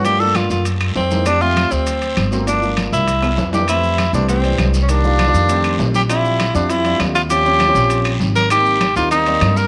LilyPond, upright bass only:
\new Staff \with { instrumentName = "Upright bass" } { \clef bass \time 4/4 \key f \major \tempo 4 = 199 g,4. ges,4. f,4~ | f,4. d,4. g,,4~ | g,,4. c,4. f,4~ | f,4. c,4. c,4~ |
c,4. f,4. bes,,4~ | bes,,4. f,4. ees,4~ | ees,4. bes,,4. aes,,4~ | aes,,4. ees,4. g,4 | }